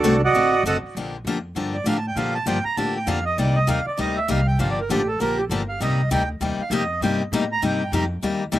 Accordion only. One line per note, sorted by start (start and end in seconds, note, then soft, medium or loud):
0.00 0.22 D4 medium
0.00 0.22 F#4 medium
0.00 0.21 A4 medium
0.00 0.21 D5 medium
0.25 0.63 F#4 medium
0.25 0.63 D5 medium
0.25 0.64 D#5 medium
0.25 0.63 F#5 loud
0.67 0.77 A4 medium
0.67 0.77 D#5 medium
0.67 0.77 F#5 medium
0.67 0.77 A5 medium
1.74 1.86 D5 medium
1.88 1.97 F5 medium
1.96 2.06 A5 medium
2.08 2.17 G5 medium
2.17 2.34 F5 medium
2.34 2.46 A5 loud
2.47 2.64 G5 medium
2.65 2.77 A#5 loud
2.77 2.94 A5 medium
2.97 3.08 G5 medium
3.07 3.25 F5 medium
3.26 3.38 D#5 medium
3.38 3.55 D5 medium
3.56 3.68 D#5 medium
3.69 3.86 F5 medium
3.87 3.99 D5 medium
4.00 4.16 D#5 medium
4.17 4.29 E5 medium
4.30 4.47 F5 medium
4.47 4.59 G5 medium
4.60 4.70 F5 medium
4.71 4.80 D5 medium
4.80 4.90 A#4 medium
4.91 5.08 G4 medium
5.08 5.20 A4 medium
5.21 5.38 A#4 medium
5.37 5.45 G4 medium
5.69 5.81 F5 medium
5.82 6.10 D#5 medium
6.13 6.29 G5 medium
6.62 6.72 F5 medium
6.74 7.01 D#5 medium
7.03 7.20 G5 medium
7.52 7.63 A#5 loud
7.65 7.92 G5 medium
7.94 8.05 A#5 medium